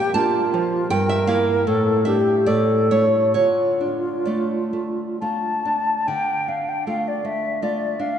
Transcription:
Already playing: nylon-string guitar A#2 A#3 G5, flute G4
0.14 nylon-string guitar A#3 D4 A5, flute F4
0.54 nylon-string guitar F3
0.90 nylon-string guitar G2 G5, flute A#4
1.09 nylon-string guitar E5
1.27 nylon-string guitar A#3 E4 F5
1.67 nylon-string guitar A2, flute A4
2.05 nylon-string guitar A3 D4 E5, flute G4
2.46 nylon-string guitar A2 D5, flute A4
2.91 nylon-string guitar A3 E4 C#5
3.34 nylon-string guitar D3 C#5, flute F4
3.81 nylon-string guitar D4
4.25 nylon-string guitar A3 F4 D5
4.73 nylon-string guitar A3
5.20 nylon-string guitar A3 F4, flute A5
5.65 nylon-string guitar D4
6.07 nylon-string guitar D3, flute G5
6.48 nylon-string guitar D4, flute F5
6.69 flute G5
6.87 nylon-string guitar A3 F4, flute F5
7.08 flute D5
7.25 nylon-string guitar A3, flute E5
7.62 nylon-string guitar A3 F4, flute D5
7.99 nylon-string guitar D4, flute F5

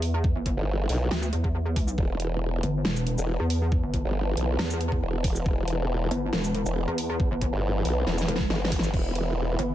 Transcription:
Already playing: wobble bass E2, supersaw synth E3 B3 B4 E5
0.02 open hi-hat
0.24 kick
0.36 wobble bass G1
0.46 kick, closed hi-hat
0.57 wobble bass G1
0.89 wobble bass B1, open hi-hat
1.11 wobble bass D2, snare
1.23 closed hi-hat, shaker
1.33 wobble bass E2, closed hi-hat
1.44 kick
1.76 kick, open hi-hat
1.88 shaker
1.98 wobble bass E1, supersaw synth A5, kick
2.20 closed hi-hat
2.63 wobble bass G1, closed hi-hat
2.85 wobble bass E1, snare
2.96 closed hi-hat, shaker
3.07 closed hi-hat
3.18 wobble bass E1, shaker
3.40 wobble bass E2
3.50 open hi-hat
3.72 kick
3.83 wobble bass G1
3.94 kick, closed hi-hat
4.05 wobble bass G1
4.37 wobble bass B1, closed hi-hat
4.59 wobble bass E2, snare
4.70 closed hi-hat, shaker
4.81 closed hi-hat
4.92 kick
5.02 wobble bass E1
5.24 kick, open hi-hat
5.36 shaker
5.46 wobble bass E1, kick
5.68 closed hi-hat
6.11 wobble bass G1, closed hi-hat
6.33 wobble bass E1, snare
6.44 closed hi-hat, shaker
6.55 closed hi-hat
6.66 wobble bass E1, shaker
6.88 wobble bass E2
6.98 open hi-hat
7.20 kick
7.31 wobble bass G1
7.41 kick, closed hi-hat
7.53 wobble bass G1
7.85 wobble bass B1, open hi-hat
8.07 wobble bass E1, snare
8.18 snare, closed hi-hat, shaker
8.28 wobble bass E1, closed hi-hat
8.36 snare
8.40 kick
8.50 wobble bass G1, snare
8.65 snare
8.72 kick, open hi-hat
8.79 snare
8.83 shaker
8.94 wobble bass E1, supersaw synth E5, kick, crash
9.15 closed hi-hat
9.59 wobble bass G1, closed hi-hat

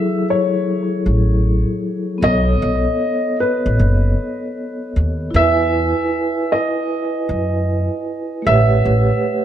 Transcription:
Already playing: vibraphone F#3 E4 G#4 A4, upright piano E5
0.30 upright piano C#5
1.06 upright bass A1
2.18 vibraphone B3 A4
2.22 upright bass B1, vibraphone C#5, upright piano D#5
2.28 vibraphone D#5
2.62 upright bass B1
3.40 upright piano B4
3.66 upright bass A1
3.79 upright bass F#1
4.96 upright bass D#2
5.31 upright bass E2, vibraphone E4 B4
5.36 upright piano E5
5.40 vibraphone G#5
6.52 upright piano D#5
7.29 upright bass F#2
8.42 vibraphone A3 G4
8.47 upright bass A1, vibraphone B4 C#5, upright piano E5
8.52 vibraphone F#5
8.85 upright bass A1

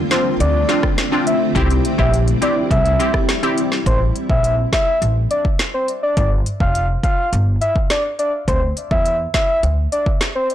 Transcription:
Already playing: ambient pad D3 A3 C4 F4
0.11 synth pluck C4 D4 F4, soft synth lead C5, snare, closed hi-hat
0.40 upright bass D2, soft synth lead D5, closed hi-hat
0.69 synth pluck C4 D4 F4, snare, closed hi-hat
0.83 kick, cross-stick
0.98 snare, closed hi-hat
1.12 synth pluck C4 D4 F4
1.27 soft synth lead E5, closed hi-hat
1.55 upright bass C2, ambient pad G3 E4, synth pluck C4 E4 G4, kick, closed hi-hat
1.70 closed hi-hat
1.85 closed hi-hat
1.98 upright bass A#1, synth pluck C4 E4 G4, soft synth lead E5, kick
2.14 closed hi-hat
2.28 closed hi-hat
2.42 synth pluck C4 E4 G4, soft synth lead D5, closed hi-hat
2.71 upright bass C2, soft synth lead E5, kick, closed hi-hat
2.85 closed hi-hat
2.99 synth pluck C4 E4 G4, closed hi-hat
3.14 kick, cross-stick
3.29 snare, closed hi-hat
3.43 synth pluck C4 E4 G4, closed hi-hat
3.58 closed hi-hat
3.72 snare
3.86 upright bass A1, soft synth lead C5, kick, closed hi-hat
4.16 closed hi-hat
4.30 upright bass A#1, soft synth lead E5, kick
4.44 closed hi-hat
4.73 soft synth lead E5, kick, snare, closed hi-hat
5.02 upright bass A1, closed hi-hat
5.31 soft synth lead D5, closed hi-hat
5.45 kick
5.59 snare, closed hi-hat
5.74 soft synth lead C5
5.88 closed hi-hat
6.03 soft synth lead D5
6.17 upright bass G1, soft synth lead D5, kick, closed hi-hat
6.46 closed hi-hat
6.60 upright bass F1, soft synth lead F5, kick
6.75 closed hi-hat
7.03 soft synth lead F5, kick, closed hi-hat
7.33 upright bass G1, closed hi-hat
7.61 soft synth lead E5, closed hi-hat
7.76 kick
7.90 soft synth lead D5, snare, closed hi-hat
8.19 soft synth lead D5, closed hi-hat
8.48 upright bass D2, soft synth lead C5, kick, closed hi-hat
8.77 closed hi-hat
8.91 upright bass E2, soft synth lead E5, kick
9.06 closed hi-hat
9.34 soft synth lead E5, kick, snare, closed hi-hat
9.63 upright bass D2, closed hi-hat
9.92 soft synth lead D5, closed hi-hat
10.06 kick
10.21 snare, closed hi-hat
10.35 soft synth lead C5
10.50 closed hi-hat

